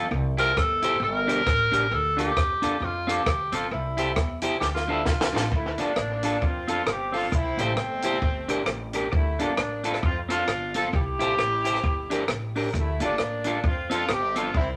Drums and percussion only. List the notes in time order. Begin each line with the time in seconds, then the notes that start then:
0.38 closed hi-hat
0.57 kick, cross-stick
0.82 closed hi-hat
1.29 closed hi-hat
1.46 kick, cross-stick
1.73 closed hi-hat
2.18 closed hi-hat
2.37 kick, cross-stick
2.62 closed hi-hat
3.09 closed hi-hat
3.26 kick, cross-stick
3.52 closed hi-hat
3.98 closed hi-hat
4.16 kick, cross-stick
4.41 closed hi-hat
4.61 snare
4.76 snare
5.05 kick, snare
5.21 snare
5.36 snare
5.52 kick
5.78 closed hi-hat
5.96 cross-stick
6.23 closed hi-hat
6.42 kick
6.68 closed hi-hat
6.87 cross-stick
7.14 open hi-hat
7.32 kick, hi-hat pedal
7.58 closed hi-hat
7.77 cross-stick
8.02 closed hi-hat
8.22 kick
8.49 closed hi-hat
8.66 cross-stick
8.93 closed hi-hat
9.13 kick
9.39 closed hi-hat
9.57 cross-stick
9.84 closed hi-hat
9.94 cross-stick
10.03 kick
10.30 closed hi-hat
10.48 cross-stick
10.74 closed hi-hat
10.93 kick
11.20 closed hi-hat
11.39 cross-stick
11.65 closed hi-hat
11.75 cross-stick
11.84 kick
12.11 closed hi-hat
12.28 cross-stick
12.56 open hi-hat
12.74 kick, hi-hat pedal
13.00 closed hi-hat
13.18 cross-stick
13.44 closed hi-hat
13.64 kick
13.91 closed hi-hat
14.09 cross-stick
14.36 closed hi-hat
14.54 kick